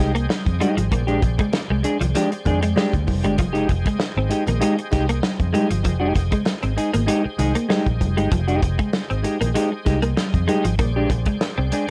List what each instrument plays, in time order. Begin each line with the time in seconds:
Already playing: clean electric guitar G#3, tonewheel organ G#4 C5 D#5 G5
0.00 fingered electric bass C2, clean electric guitar D#4 G4, closed hi-hat
0.14 clean electric guitar A#3, muted clean electric guitar stroke, closed hi-hat
0.29 muted clean electric guitar stroke, snare, high conga
0.45 fingered electric bass F2, muted clean electric guitar stroke, kick, closed hi-hat
0.60 clean electric guitar G#3 D#4 G4, closed hi-hat, high conga
0.76 fingered electric bass G#1, clean electric guitar F3, muted clean electric guitar stroke, closed hi-hat
0.90 fingered electric bass A#1, clean electric guitar A#3, tonewheel organ D5, muted clean electric guitar stroke, kick, closed hi-hat, muted conga
1.07 clean electric guitar G#3 D4 G4, closed hi-hat
1.22 fingered electric bass A#1, muted clean electric guitar stroke, kick, closed hi-hat, muted conga
1.38 clean electric guitar G#3, muted clean electric guitar stroke, kick, closed hi-hat
1.52 muted clean electric guitar stroke, snare, high conga
1.70 fingered electric bass C2, clean electric guitar G#3
1.83 clean electric guitar G#3 D4 G#4, muted clean electric guitar stroke, closed hi-hat
2.00 fingered electric bass C2, clean electric guitar F3, closed hi-hat, low conga
2.15 clean electric guitar F3 G#3 D4 G4, closed hi-hat
2.31 muted clean electric guitar stroke, closed hi-hat
2.45 fingered electric bass F2, clean electric guitar G#3 D4 G#4, kick, closed hi-hat, muted conga, low conga
2.61 clean electric guitar G#3, muted clean electric guitar stroke, closed hi-hat
2.76 clean electric guitar G#3 D4 G4, snare, high conga
2.93 fingered electric bass D2, muted clean electric guitar stroke, kick, closed hi-hat
3.07 fingered electric bass F1, muted clean electric guitar stroke, kick, open hi-hat, high conga
3.24 fingered electric bass G1, clean electric guitar G#3 D4 G4, closed hi-hat
3.38 fingered electric bass F1, clean electric guitar F3, tonewheel organ D#5, muted clean electric guitar stroke, kick, closed hi-hat, muted conga
3.53 clean electric guitar G#3 D#4 G4, closed hi-hat
3.69 fingered electric bass F1, muted clean electric guitar stroke, kick, closed hi-hat, muted conga
3.85 clean electric guitar G#3, muted clean electric guitar stroke, kick, closed hi-hat
3.99 muted clean electric guitar stroke, snare, high conga
4.17 fingered electric bass G#1, clean electric guitar C4
4.29 clean electric guitar G#3 D#4 G4, muted clean electric guitar stroke, closed hi-hat
4.47 fingered electric bass A#1, clean electric guitar A#3, closed hi-hat, low conga
4.60 clean electric guitar G#3 D#4 G4, closed hi-hat
4.77 muted clean electric guitar stroke, closed hi-hat
4.91 fingered electric bass C2, clean electric guitar G#3 D#4 G4, kick, snare, closed hi-hat, muted conga
5.09 clean electric guitar A#3, closed hi-hat
5.23 muted clean electric guitar stroke, snare, high conga
5.39 fingered electric bass F2, muted clean electric guitar stroke, kick, closed hi-hat
5.53 clean electric guitar G#3 D#4 G4, closed hi-hat, high conga
5.69 fingered electric bass G1, clean electric guitar F3, muted clean electric guitar stroke, closed hi-hat
5.83 fingered electric bass F1, clean electric guitar F3, muted clean electric guitar stroke, kick, closed hi-hat, muted conga
6.00 clean electric guitar G#3 D#4 G4
6.14 fingered electric bass F1, muted clean electric guitar stroke, kick, closed hi-hat, muted conga
6.31 clean electric guitar G#3, muted clean electric guitar stroke, kick, closed hi-hat
6.45 muted clean electric guitar stroke, snare, high conga
6.63 fingered electric bass G#1, clean electric guitar C4, closed hi-hat
6.77 clean electric guitar G#3 D#4 G#4, muted clean electric guitar stroke, closed hi-hat
6.94 fingered electric bass G#1, clean electric guitar A#3, closed hi-hat, low conga
7.07 clean electric guitar G#3 D#4 G4, closed hi-hat
7.23 muted clean electric guitar stroke, muted fingered electric bass stroke
7.38 fingered electric bass C2, clean electric guitar G#3 D#4 G#4, closed hi-hat, muted conga, low conga
7.55 clean electric guitar A#3, closed hi-hat
7.69 clean electric guitar G#3 D#4 G4, snare, high conga
7.86 fingered electric bass A#1, muted clean electric guitar stroke, kick, closed hi-hat
8.01 fingered electric bass F1, muted clean electric guitar stroke, kick, closed hi-hat, high conga
8.17 fingered electric bass G1, clean electric guitar G#3 D#4 G4, closed hi-hat
8.32 fingered electric bass F1, clean electric guitar F3, kick, closed hi-hat, muted conga
8.48 clean electric guitar G#3 D#4 G4, closed hi-hat
8.62 fingered electric bass F1, muted clean electric guitar stroke, kick, closed hi-hat
8.78 clean electric guitar G#3, muted clean electric guitar stroke, kick, closed hi-hat
8.93 muted clean electric guitar stroke, snare, high conga
9.10 fingered electric bass G#1, clean electric guitar C4, closed hi-hat
9.23 clean electric guitar G#3 D#4 G4, muted clean electric guitar stroke, closed hi-hat
9.41 fingered electric bass A#1, clean electric guitar A#3, closed hi-hat, low conga
9.54 clean electric guitar G#3 D#4 G4, closed hi-hat
9.71 muted clean electric guitar stroke
9.85 fingered electric bass C2, clean electric guitar G#3 D#4 G4, kick, snare, closed hi-hat, muted conga
10.02 clean electric guitar A#3, muted clean electric guitar stroke, closed hi-hat
10.17 muted clean electric guitar stroke, snare, high conga
10.34 fingered electric bass F2, muted clean electric guitar stroke, kick, closed hi-hat
10.47 clean electric guitar G#3 D#4 G4, closed hi-hat, high conga
10.64 fingered electric bass G#1, clean electric guitar F3, muted clean electric guitar stroke, closed hi-hat
10.79 fingered electric bass A#1, clean electric guitar A#3, tonewheel organ G#4 C5 D5 G5, muted clean electric guitar stroke, kick, closed hi-hat, muted conga
10.96 clean electric guitar G#3 D4 G4
11.10 fingered electric bass A#1, muted clean electric guitar stroke, kick, closed hi-hat, muted conga
11.26 clean electric guitar G#3, muted clean electric guitar stroke, kick, closed hi-hat
11.41 muted clean electric guitar stroke, snare, high conga
11.58 fingered electric bass C2, clean electric guitar C4
11.72 clean electric guitar G#3 D4 G#4, muted clean electric guitar stroke, closed hi-hat